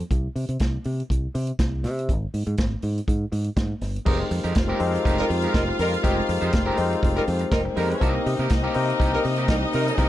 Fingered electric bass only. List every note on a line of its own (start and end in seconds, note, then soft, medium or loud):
0.11 0.27 C2 loud
0.35 0.44 C3 medium
0.49 0.56 C3 medium
0.61 0.77 C2 medium
0.86 1.01 C3 loud
1.10 1.26 C2 medium
1.35 1.51 C3 loud
1.59 1.85 C2 medium
1.84 2.10 C3 loud
2.09 2.25 G#1 loud
2.34 2.42 G#2 medium
2.47 2.54 G#2 loud
2.59 2.75 G#1 medium
2.83 2.99 G#2 loud
3.08 3.24 G#2 medium
3.32 3.48 G#2 loud
3.57 3.73 G#2 medium
3.81 3.98 G1 loud
4.07 4.23 F1 loud
4.31 4.39 F2 loud
4.44 4.52 F2 loud
4.56 4.72 F1 loud
4.80 4.96 F2 loud
5.05 5.21 F1 loud
5.30 5.46 F2 loud
5.54 5.70 F1 loud
5.79 5.95 F2 loud
6.04 6.20 F1 loud
6.29 6.37 F2 loud
6.42 6.49 F2 loud
6.54 6.69 F1 loud
6.78 6.94 F2 loud
7.03 7.19 F1 loud
7.28 7.44 F2 loud
7.52 7.68 F1 loud
7.77 7.93 F2 loud
8.02 8.17 C2 loud
8.26 8.34 C3 loud
8.39 8.46 C3 loud
8.51 8.66 C2 loud
8.76 8.91 C3 loud
9.00 9.16 C2 medium
9.25 9.50 C3 loud
9.48 9.64 C2 loud
9.74 9.90 C3 loud
9.98 10.09 C2 loud